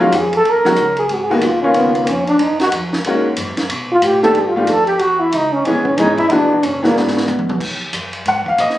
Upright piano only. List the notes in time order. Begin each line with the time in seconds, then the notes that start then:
0.00 D#3 F#3 G#3 C#4 F4
0.65 D#3 F#3 G#3 C#4 F#4
1.30 D#3 G#3 A#3 B3 F#4
1.63 D#3 A#3 B3 C#4 F4
3.06 D#3 G#3 A#3 C#4 F#4
4.23 D#3 A3 B3 D4 G4
4.56 D#3 A3 B3 D4 F4
5.67 E3 G#3 B3 C#4 G#4
5.99 E3 G#3 B3 C#4 G#4
6.30 E3 G#3 B3 D4 F#4
6.82 E3 G#3 B3 D4 F#4
8.28 F#5
8.48 F5
8.60 D#5